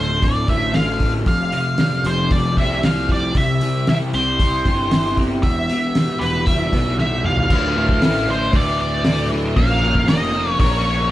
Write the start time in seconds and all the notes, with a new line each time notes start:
Already playing: D1 D2 A2 D3 A3 D4 F4 C5
0.22 D3 D5, kick, open hi-hat
0.48 A1 A3 E5, kick, open hi-hat
0.74 D3 F5, snare, open hi-hat
1.00 A2, kick, open hi-hat
1.26 F1 F2 G4 F5, kick, open hi-hat
1.52 C3, open hi-hat
1.78 G3, snare, open hi-hat
2.04 F1 F3 C5, open hi-hat
2.31 G3 D5, kick, open hi-hat
2.57 C2 C4 E5, kick, open hi-hat
2.83 G3 F5, snare, open hi-hat
3.09 F3 D5, kick, open hi-hat
3.34 C2 C3 C4 E4 E5, kick, open hi-hat
3.61 G3, open hi-hat
3.87 E4 E5, snare, open hi-hat
4.13 C2 C4 C5, open hi-hat
4.39 E4, kick, open hi-hat
4.65 G1 G4, kick, open hi-hat
4.91 E4, snare, open hi-hat
5.17 C4, kick, open hi-hat
5.43 E1 E2 B3 E5, kick, open hi-hat
5.69 B2, open hi-hat
5.95 G3, snare, open hi-hat
6.19 E1 E3 B4, open hi-hat
6.46 G3 E5, kick, open hi-hat
6.73 B1 B3, kick, open hi-hat
6.99 G3 E5, snare
7.24 E3 F5, mid tom
7.37 floor tom
7.50 D2 A2 D3 E3 A3 E4 D5, kick, crash
7.76 D3 A3 E4
7.89 kick
8.01 A1 A2 D3 A3 E4, snare, open hi-hat
8.27 D3 A3 E4 C5
8.53 D2 A2 D3 A3 E4 D5, kick, open hi-hat
8.81 D5
9.04 A2 D3 A3 E4, snare, open hi-hat
9.30 D3 A3 E4
9.56 A#1 A#2 F3 A#3 C#4 F4 A#4 C#5 F5, kick, open hi-hat
9.82 A#3 C#4 F4 A#4
9.95 kick
10.07 F1 A#3 C#4 F4 A#4 D#5, snare, open hi-hat
10.33 A#3 C#4 F4 A#4
10.59 A#1 A#2 F3 A#3 C#4 F4 A#4 C#5, kick, open hi-hat